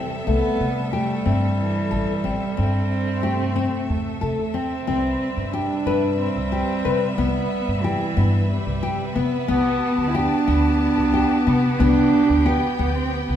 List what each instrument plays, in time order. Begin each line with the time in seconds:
Already playing: string section C3 A4 E5, cello G3, nylon-string guitar C4
0.26 upright bass C2, clarinet G3, nylon-string guitar A3, cello B3
0.61 upright bass C3
0.93 cello A3, nylon-string guitar G4
1.26 upright bass G2, nylon-string guitar C4
1.59 cello E3
1.91 upright bass A1, nylon-string guitar A4
2.24 upright bass A1, cello G3, nylon-string guitar C4
2.57 upright bass G2, nylon-string guitar C4, cello C4
3.23 clarinet A3, nylon-string guitar G4
3.56 nylon-string guitar C4
3.89 upright bass E2, cello A3
4.21 upright bass C3, nylon-string guitar A4
4.39 upright bass E2
4.54 nylon-string guitar C4, cello C4
4.86 upright bass C2, string section C3 B4 E5, clarinet G3, nylon-string guitar C4
5.37 upright bass G2
5.53 cello D4, nylon-string guitar G4
5.86 upright bass G2, nylon-string guitar B4
6.19 cello C4
6.36 upright bass C2
6.52 nylon-string guitar G4
6.85 upright bass C3, nylon-string guitar B4
7.17 upright bass C2, cello B3, nylon-string guitar B3
7.68 upright bass G2
7.83 cello E3, nylon-string guitar G4
8.17 upright bass G2, nylon-string guitar B3
8.49 cello G3
8.66 upright bass C2
8.83 nylon-string guitar G4
9.15 upright bass C3, nylon-string guitar B3, cello B3
9.48 upright bass C2, nylon-string guitar B3, clarinet B3, string section G4 A5
9.98 upright bass D2
10.08 cello E4
10.15 clarinet B3, cello D4, nylon-string guitar G4
10.48 upright bass D2, nylon-string guitar B3
10.82 cello D4
10.97 upright bass C2
11.14 nylon-string guitar G4
11.47 upright bass C3, nylon-string guitar B3, cello B3
11.79 upright bass C2, nylon-string guitar B3, cello D4, string section G5
12.30 upright bass D2
12.45 cello B3, nylon-string guitar G4
12.79 upright bass D2, nylon-string guitar B3
12.95 cello C4
13.12 cello B3
13.29 upright bass C2